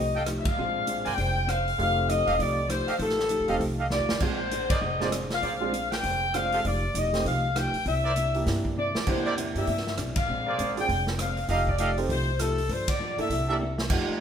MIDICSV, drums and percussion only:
0, 0, Header, 1, 2, 480
1, 0, Start_track
1, 0, Tempo, 302877
1, 913, Time_signature, 4, 2, 24, 8
1, 22509, End_track
2, 0, Start_track
2, 0, Title_t, "Drums"
2, 417, Note_on_c, 9, 37, 56
2, 417, Note_on_c, 9, 42, 50
2, 576, Note_off_c, 9, 37, 0
2, 576, Note_off_c, 9, 42, 0
2, 717, Note_on_c, 9, 51, 58
2, 719, Note_on_c, 9, 36, 67
2, 876, Note_off_c, 9, 51, 0
2, 878, Note_off_c, 9, 36, 0
2, 1381, Note_on_c, 9, 42, 45
2, 1540, Note_off_c, 9, 42, 0
2, 1672, Note_on_c, 9, 46, 37
2, 1831, Note_off_c, 9, 46, 0
2, 1866, Note_on_c, 9, 46, 42
2, 1869, Note_on_c, 9, 36, 30
2, 2025, Note_off_c, 9, 46, 0
2, 2027, Note_off_c, 9, 36, 0
2, 2356, Note_on_c, 9, 37, 52
2, 2356, Note_on_c, 9, 42, 50
2, 2515, Note_off_c, 9, 37, 0
2, 2515, Note_off_c, 9, 42, 0
2, 2658, Note_on_c, 9, 46, 31
2, 2816, Note_off_c, 9, 46, 0
2, 2833, Note_on_c, 9, 36, 27
2, 2846, Note_on_c, 9, 46, 37
2, 2991, Note_off_c, 9, 36, 0
2, 3004, Note_off_c, 9, 46, 0
2, 3320, Note_on_c, 9, 42, 49
2, 3479, Note_off_c, 9, 42, 0
2, 3604, Note_on_c, 9, 46, 34
2, 3762, Note_off_c, 9, 46, 0
2, 3794, Note_on_c, 9, 36, 30
2, 3802, Note_on_c, 9, 46, 44
2, 3952, Note_off_c, 9, 36, 0
2, 3961, Note_off_c, 9, 46, 0
2, 4273, Note_on_c, 9, 37, 57
2, 4273, Note_on_c, 9, 42, 50
2, 4431, Note_off_c, 9, 37, 0
2, 4431, Note_off_c, 9, 42, 0
2, 4564, Note_on_c, 9, 46, 37
2, 4722, Note_off_c, 9, 46, 0
2, 4743, Note_on_c, 9, 46, 38
2, 4748, Note_on_c, 9, 36, 31
2, 4902, Note_off_c, 9, 46, 0
2, 4902, Note_on_c, 9, 38, 27
2, 4906, Note_off_c, 9, 36, 0
2, 5060, Note_off_c, 9, 38, 0
2, 5063, Note_on_c, 9, 38, 35
2, 5215, Note_on_c, 9, 42, 45
2, 5221, Note_off_c, 9, 38, 0
2, 5374, Note_off_c, 9, 42, 0
2, 5517, Note_on_c, 9, 46, 32
2, 5675, Note_off_c, 9, 46, 0
2, 5711, Note_on_c, 9, 36, 32
2, 5715, Note_on_c, 9, 46, 38
2, 5869, Note_off_c, 9, 36, 0
2, 5873, Note_off_c, 9, 46, 0
2, 6187, Note_on_c, 9, 38, 42
2, 6346, Note_off_c, 9, 38, 0
2, 6480, Note_on_c, 9, 38, 52
2, 6639, Note_off_c, 9, 38, 0
2, 6662, Note_on_c, 9, 49, 62
2, 6669, Note_on_c, 9, 36, 65
2, 6821, Note_off_c, 9, 49, 0
2, 6828, Note_off_c, 9, 36, 0
2, 7154, Note_on_c, 9, 42, 44
2, 7312, Note_off_c, 9, 42, 0
2, 7448, Note_on_c, 9, 36, 78
2, 7448, Note_on_c, 9, 51, 65
2, 7607, Note_off_c, 9, 36, 0
2, 7607, Note_off_c, 9, 51, 0
2, 7930, Note_on_c, 9, 38, 30
2, 8088, Note_off_c, 9, 38, 0
2, 8117, Note_on_c, 9, 37, 55
2, 8117, Note_on_c, 9, 42, 51
2, 8275, Note_off_c, 9, 37, 0
2, 8275, Note_off_c, 9, 42, 0
2, 8405, Note_on_c, 9, 38, 36
2, 8405, Note_on_c, 9, 46, 36
2, 8563, Note_off_c, 9, 38, 0
2, 8563, Note_off_c, 9, 46, 0
2, 8603, Note_on_c, 9, 36, 28
2, 8603, Note_on_c, 9, 46, 41
2, 8761, Note_off_c, 9, 36, 0
2, 8761, Note_off_c, 9, 46, 0
2, 9091, Note_on_c, 9, 42, 46
2, 9249, Note_off_c, 9, 42, 0
2, 9383, Note_on_c, 9, 38, 39
2, 9383, Note_on_c, 9, 46, 35
2, 9541, Note_off_c, 9, 38, 0
2, 9541, Note_off_c, 9, 46, 0
2, 9564, Note_on_c, 9, 46, 44
2, 9565, Note_on_c, 9, 36, 32
2, 9723, Note_off_c, 9, 46, 0
2, 9724, Note_off_c, 9, 36, 0
2, 10048, Note_on_c, 9, 37, 55
2, 10048, Note_on_c, 9, 42, 51
2, 10206, Note_off_c, 9, 37, 0
2, 10206, Note_off_c, 9, 42, 0
2, 10339, Note_on_c, 9, 46, 33
2, 10498, Note_off_c, 9, 46, 0
2, 10536, Note_on_c, 9, 36, 30
2, 10536, Note_on_c, 9, 46, 41
2, 10694, Note_off_c, 9, 36, 0
2, 10695, Note_off_c, 9, 46, 0
2, 11013, Note_on_c, 9, 42, 51
2, 11172, Note_off_c, 9, 42, 0
2, 11311, Note_on_c, 9, 38, 40
2, 11311, Note_on_c, 9, 46, 38
2, 11469, Note_off_c, 9, 38, 0
2, 11469, Note_off_c, 9, 46, 0
2, 11500, Note_on_c, 9, 36, 32
2, 11507, Note_on_c, 9, 46, 42
2, 11658, Note_off_c, 9, 36, 0
2, 11666, Note_off_c, 9, 46, 0
2, 11979, Note_on_c, 9, 37, 64
2, 11979, Note_on_c, 9, 42, 52
2, 12138, Note_off_c, 9, 37, 0
2, 12138, Note_off_c, 9, 42, 0
2, 12264, Note_on_c, 9, 46, 36
2, 12422, Note_off_c, 9, 46, 0
2, 12451, Note_on_c, 9, 46, 37
2, 12455, Note_on_c, 9, 36, 28
2, 12609, Note_off_c, 9, 46, 0
2, 12613, Note_off_c, 9, 36, 0
2, 12930, Note_on_c, 9, 42, 45
2, 13088, Note_off_c, 9, 42, 0
2, 13226, Note_on_c, 9, 46, 35
2, 13384, Note_off_c, 9, 46, 0
2, 13415, Note_on_c, 9, 38, 39
2, 13415, Note_on_c, 9, 46, 40
2, 13417, Note_on_c, 9, 36, 31
2, 13574, Note_off_c, 9, 38, 0
2, 13574, Note_off_c, 9, 46, 0
2, 13576, Note_off_c, 9, 36, 0
2, 13707, Note_on_c, 9, 36, 50
2, 13866, Note_off_c, 9, 36, 0
2, 14185, Note_on_c, 9, 38, 52
2, 14344, Note_off_c, 9, 38, 0
2, 14369, Note_on_c, 9, 49, 61
2, 14377, Note_on_c, 9, 36, 62
2, 14527, Note_off_c, 9, 49, 0
2, 14535, Note_off_c, 9, 36, 0
2, 14862, Note_on_c, 9, 42, 51
2, 15020, Note_off_c, 9, 42, 0
2, 15143, Note_on_c, 9, 46, 37
2, 15301, Note_off_c, 9, 46, 0
2, 15329, Note_on_c, 9, 46, 45
2, 15335, Note_on_c, 9, 36, 32
2, 15485, Note_on_c, 9, 38, 24
2, 15487, Note_off_c, 9, 46, 0
2, 15493, Note_off_c, 9, 36, 0
2, 15644, Note_off_c, 9, 38, 0
2, 15645, Note_on_c, 9, 38, 36
2, 15804, Note_off_c, 9, 38, 0
2, 15810, Note_on_c, 9, 37, 53
2, 15810, Note_on_c, 9, 42, 50
2, 15968, Note_off_c, 9, 37, 0
2, 15968, Note_off_c, 9, 42, 0
2, 16097, Note_on_c, 9, 51, 65
2, 16105, Note_on_c, 9, 36, 72
2, 16256, Note_off_c, 9, 51, 0
2, 16263, Note_off_c, 9, 36, 0
2, 16781, Note_on_c, 9, 42, 50
2, 16939, Note_off_c, 9, 42, 0
2, 17072, Note_on_c, 9, 46, 34
2, 17231, Note_off_c, 9, 46, 0
2, 17255, Note_on_c, 9, 36, 33
2, 17264, Note_on_c, 9, 46, 42
2, 17414, Note_off_c, 9, 36, 0
2, 17423, Note_off_c, 9, 46, 0
2, 17543, Note_on_c, 9, 38, 38
2, 17701, Note_off_c, 9, 38, 0
2, 17732, Note_on_c, 9, 37, 58
2, 17732, Note_on_c, 9, 42, 55
2, 17890, Note_off_c, 9, 37, 0
2, 17890, Note_off_c, 9, 42, 0
2, 18020, Note_on_c, 9, 46, 31
2, 18178, Note_off_c, 9, 46, 0
2, 18202, Note_on_c, 9, 46, 41
2, 18205, Note_on_c, 9, 36, 30
2, 18361, Note_off_c, 9, 46, 0
2, 18364, Note_off_c, 9, 36, 0
2, 18496, Note_on_c, 9, 36, 44
2, 18654, Note_off_c, 9, 36, 0
2, 18674, Note_on_c, 9, 42, 49
2, 18832, Note_off_c, 9, 42, 0
2, 18981, Note_on_c, 9, 46, 36
2, 19140, Note_off_c, 9, 46, 0
2, 19166, Note_on_c, 9, 36, 35
2, 19176, Note_on_c, 9, 46, 44
2, 19325, Note_off_c, 9, 36, 0
2, 19334, Note_off_c, 9, 46, 0
2, 19643, Note_on_c, 9, 37, 54
2, 19643, Note_on_c, 9, 42, 51
2, 19801, Note_off_c, 9, 37, 0
2, 19801, Note_off_c, 9, 42, 0
2, 19938, Note_on_c, 9, 46, 36
2, 20097, Note_off_c, 9, 46, 0
2, 20116, Note_on_c, 9, 46, 42
2, 20119, Note_on_c, 9, 36, 30
2, 20275, Note_off_c, 9, 46, 0
2, 20277, Note_off_c, 9, 36, 0
2, 20410, Note_on_c, 9, 51, 70
2, 20411, Note_on_c, 9, 36, 67
2, 20569, Note_off_c, 9, 51, 0
2, 20570, Note_off_c, 9, 36, 0
2, 20894, Note_on_c, 9, 46, 36
2, 21053, Note_off_c, 9, 46, 0
2, 21077, Note_on_c, 9, 36, 31
2, 21085, Note_on_c, 9, 46, 45
2, 21236, Note_off_c, 9, 36, 0
2, 21244, Note_off_c, 9, 46, 0
2, 21845, Note_on_c, 9, 38, 51
2, 22004, Note_off_c, 9, 38, 0
2, 22024, Note_on_c, 9, 49, 78
2, 22031, Note_on_c, 9, 36, 67
2, 22183, Note_off_c, 9, 49, 0
2, 22189, Note_off_c, 9, 36, 0
2, 22509, End_track
0, 0, End_of_file